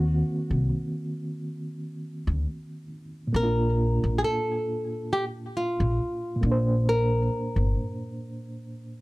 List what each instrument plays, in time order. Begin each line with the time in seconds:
Already playing: upright bass D#2, reed electric piano D#3 A#3 C4 F#4
0.50 upright bass C2
2.27 upright bass D2
3.27 reed electric piano A#2
3.33 upright bass A#1, reed electric piano A#3, nylon-string guitar A#4
3.38 reed electric piano C4
3.43 reed electric piano D4 F4
4.04 upright bass A#1
4.18 nylon-string guitar G#4
4.24 nylon-string guitar A4
5.13 nylon-string guitar G4
5.57 nylon-string guitar F4
5.80 upright bass A#1
6.36 reed electric piano A#2
6.41 upright bass A#1, reed electric piano A#3
6.46 reed electric piano D4
6.52 reed electric piano C5
6.89 nylon-string guitar A#4
7.56 upright bass G1